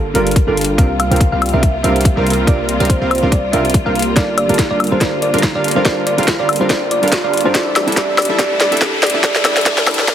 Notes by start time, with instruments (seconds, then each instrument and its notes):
Already playing: 808-style bass G1, string section D3 G3 A#3 F4, synth pluck A4
0.14 808-style bass G1, grand piano G3 D4 F4 A4 A#4, supersaw synth G3 D4 F4 A#4 F5, synth pluck A#4, closed hi-hat
0.27 closed hi-hat
0.31 closed hi-hat
0.36 kick, closed hi-hat
0.47 808-style bass G1, grand piano G3 D4 F4 A4 A#4, supersaw synth G3 D4 F4 A#4 F5, synth pluck A4
0.57 closed hi-hat
0.61 closed hi-hat
0.65 closed hi-hat
0.77 808-style bass C2, grand piano C3 C4 D4 F4 A#4, string section C3 A#3, supersaw synth G3 C4 F4 A#4 F5, synth pluck F5, kick, closed hi-hat
0.99 synth pluck F5, closed hi-hat, high woodblock
1.10 808-style bass C2, grand piano C3 C4 D4 F4 A#4, supersaw synth G3 C4 F4 A#4 F5, closed hi-hat
1.16 closed hi-hat
1.21 kick, closed hi-hat
1.32 808-style bass C2, supersaw synth G3 C4 F4 A#4 F5, synth pluck F5
1.42 closed hi-hat, high woodblock
1.46 closed hi-hat
1.49 grand piano C3, closed hi-hat
1.53 808-style bass C2, supersaw synth G3 C4 F4 A#4 F5, grand piano C4 D4 F4 A#4, synth pluck E5
1.63 kick, closed hi-hat
1.83 808-style bass C2, grand piano C3 C4 D4 F4 A#4, supersaw synth G3 C4 F4 A#4 F5, synth pluck E5, closed hi-hat
1.96 closed hi-hat
2.01 closed hi-hat
2.05 kick, closed hi-hat
2.16 808-style bass C2, grand piano C3 C4 D4 F4 A#4, supersaw synth G3 C4 F4 A#4 F5
2.27 closed hi-hat
2.30 closed hi-hat
2.34 closed hi-hat
2.46 808-style bass C2, grand piano C3 C4 D4 F4 A#4, supersaw synth G3 C4 F4 A#4 F5, synth pluck D5, kick, closed hi-hat
2.69 closed hi-hat
2.79 808-style bass C2, grand piano C3 C4 D4 F4 A#4, supersaw synth G3 C4 F4 A#4 F5, closed hi-hat
2.85 closed hi-hat
2.90 synth pluck C5, kick, closed hi-hat
3.02 808-style bass C2, supersaw synth G3 C4 F4 A#4 F5
3.11 synth pluck C5, closed hi-hat, high woodblock
3.15 closed hi-hat
3.18 grand piano C3, closed hi-hat
3.22 808-style bass C2, supersaw synth G3 C4 F4 A#4 F5, grand piano C4 D4 F4 A#4
3.32 synth pluck D5, kick, closed hi-hat
3.52 808-style bass C2, grand piano C3 C4 D4 F4 A#4, supersaw synth G3 C4 F4 A#4 F5, synth pluck E5, closed hi-hat
3.65 closed hi-hat
3.70 closed hi-hat
3.74 kick, closed hi-hat
3.85 808-style bass C2, grand piano C3 C4 D4 F4 A#4, supersaw synth G3 C4 F4 A#4 F5, synth pluck F5
3.95 closed hi-hat
3.99 closed hi-hat
4.02 closed hi-hat
4.15 808-style bass G1, string section D3, grand piano G3 D4 F4 A4 A#4, supersaw synth G3 D4 F4 A#4 F5, synth pluck D5, kick, snare, closed hi-hat, riser
4.38 synth pluck D5, closed hi-hat, high woodblock
4.48 808-style bass G1, grand piano G3 D4 F4 A4 A#4, supersaw synth G3 D4 F4 A#4 F5, closed hi-hat
4.54 closed hi-hat
4.59 kick, snare, closed hi-hat
4.70 808-style bass G1, supersaw synth G3 D4 F4 A#4 F5, synth pluck D5
4.80 closed hi-hat, high woodblock
4.84 closed hi-hat
4.87 grand piano G3 D4, closed hi-hat
4.91 808-style bass G1, supersaw synth G3 D4 F4 A#4 F5, grand piano F4 A4 A#4, synth pluck C5
5.00 808-style bass G1, grand piano G3 F4 A#4, supersaw synth G3 D4, synth pluck D5, kick, snare, closed hi-hat
5.22 synth pluck D5, closed hi-hat
5.33 808-style bass G1, grand piano G3 D4 F4 A4 A#4, supersaw synth G3 D4 F4 A#4 F5, closed hi-hat
5.38 closed hi-hat
5.43 kick, snare, closed hi-hat
5.55 808-style bass G1, supersaw synth G3 D4 F4 A#4 F5, synth pluck D5
5.64 closed hi-hat
5.68 closed hi-hat
5.71 grand piano G3, closed hi-hat
5.76 808-style bass G1, supersaw synth G3 D4 F4 A#4 F5, grand piano D4 F4 A4 A#4, synth pluck C5
5.85 808-style bass G1, grand piano G3 D4 F4 A4 A#4, supersaw synth D4 F4 F5, synth pluck D5, kick, snare, closed hi-hat
6.07 synth pluck D5, closed hi-hat
6.17 808-style bass G1, grand piano G3 D4 F4 A4 A#4, supersaw synth G3 D4 F4 A#4 F5, closed hi-hat
6.23 closed hi-hat
6.28 kick, snare, closed hi-hat
6.39 808-style bass G1, supersaw synth G3 D4 F4 A#4 F5, synth pluck D5
6.49 closed hi-hat, high woodblock
6.53 closed hi-hat
6.56 grand piano G3, closed hi-hat
6.60 808-style bass G1, supersaw synth G3 D4 F4 A#4 F5, grand piano D4 F4 A4 A#4, synth pluck C5
6.69 808-style bass G1, grand piano G3 D4 F4, supersaw synth G3 D4 F4 A#4 F5, synth pluck D5, kick, snare, closed hi-hat
6.91 synth pluck D5, closed hi-hat
7.02 808-style bass G1, grand piano G3 D4 F4 A4 A#4, supersaw synth G3 D4 F4 A#4 F5, closed hi-hat
7.08 closed hi-hat
7.12 kick, snare, closed hi-hat
7.24 808-style bass G1, supersaw synth G3 D4 F4 A#4 F5, synth pluck D5
7.34 closed hi-hat
7.37 closed hi-hat
7.41 grand piano G3, closed hi-hat
7.45 808-style bass G2, supersaw synth G3 D4 F4 A#4 F5, grand piano D4 F4 A4 A#4, synth pluck C5
7.54 808-style bass A1, string section C3 G3 A3 E4, grand piano G3 D4 E4 A4, supersaw synth G3 E4 A4, synth pluck D5, kick, snare, closed hi-hat
7.76 synth pluck D5, snare, closed hi-hat, high woodblock
7.86 808-style bass A1, grand piano G3 D4 E4 A4, supersaw synth G3 D4 E4 A4 E5, closed hi-hat
7.92 grand piano G3 D4, closed hi-hat
7.97 808-style bass A1, supersaw synth G3 E4 A4 E5, grand piano E4 A4, synth pluck D5, kick, snare, closed hi-hat
8.18 synth pluck D5, snare, closed hi-hat, high woodblock
8.22 closed hi-hat
8.25 grand piano G3 D4, closed hi-hat
8.29 808-style bass A1, supersaw synth G3 D4 E4 A4 E5, grand piano E4 A4
8.38 808-style bass A1, grand piano G3 D4 E4 A4, synth pluck D5, kick, snare, closed hi-hat
8.60 synth pluck D5, snare, closed hi-hat
8.71 808-style bass A1, grand piano G3 D4 E4 A4, supersaw synth G3 D4 E4 A4 E5, closed hi-hat
8.77 grand piano G3, closed hi-hat
8.81 808-style bass A1, grand piano D4 E4 A4, synth pluck D5, kick, snare, closed hi-hat
9.03 synth pluck D5, snare, closed hi-hat
9.07 closed hi-hat
9.10 grand piano G3, closed hi-hat
9.14 808-style bass A1, supersaw synth G3 D4 E4 A4 E5, grand piano D4 E4 A4
9.23 808-style bass A1, grand piano G3 D4 E4 A4, supersaw synth G3 D4 E4 A4 E5, synth pluck D5, kick, snare, closed hi-hat
9.35 snare
9.44 808-style bass A1, grand piano G3 D4 E4 A4, supersaw synth G3 D4 E4 A4 E5, synth pluck D5, snare, closed hi-hat, high woodblock
9.57 snare, closed hi-hat
9.61 grand piano G3, closed hi-hat
9.65 808-style bass A1, supersaw synth G3 E4, grand piano D4 E4 A4, synth pluck D5, kick, snare, closed hi-hat
9.78 snare
9.86 808-style bass A1, grand piano G3 D4 E4 A4, supersaw synth G3 D4 E4 A4 E5, synth pluck D5, snare, closed hi-hat, high woodblock
9.91 closed hi-hat
9.94 closed hi-hat
9.99 snare
10.07 808-style bass A1, grand piano G3 D4 E4 A4, supersaw synth D4, synth pluck D5, kick, snare, closed hi-hat, swell